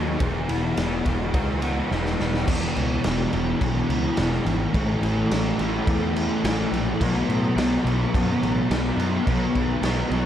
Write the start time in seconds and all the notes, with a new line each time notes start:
Already playing: D#2 F#3 B3 D#4 G#4
0.20 E1 E2, kick, ride
0.49 E1 E3, ride
0.77 E1 B3, snare, ride
1.05 E1 G#3, kick, ride
1.33 C#2 F#4, kick, ride
1.61 B3, ride
1.91 E1 E3, snare
2.05 snare
2.20 E1 B3, snare
2.34 snare
2.48 E1 E2 B2 E3, kick, crash
2.76 C#2, crash
3.04 E1 E2 B2 E3, snare, crash
3.33 E1 B2 E3, crash
3.61 B1, kick, crash
3.89 C#2, crash
4.17 E1 E2 B2 E3, snare, crash
4.33 snare
4.45 G#1 B2 E3, crash
4.73 A1 A2 E3 A3, kick, crash
5.03 A1, crash
5.31 A1 A2 E3 A3, snare, crash
5.59 A1 E3 A3, crash
5.87 E2, kick, crash
6.16 crash
6.44 A1 A2 E3 A3, snare, crash
6.72 A#1 E3 A3, crash
7.01 B1 B2 F#3 B3, kick, crash
7.28 A2, crash
7.56 B1 B2 F#3 B3, snare, crash
7.84 B1 F#3 B3, crash
8.14 F#2, kick, crash
8.42 A1, crash
8.70 B1 B2 F#3 B3, snare, crash
8.97 F#2 F#3 B3, crash
9.26 B1 B2 F#3 B3, kick, crash
9.55 B1, kick, crash
9.82 B1 B2 F#3 B3, snare, crash
10.10 B1 F#3 B3, crash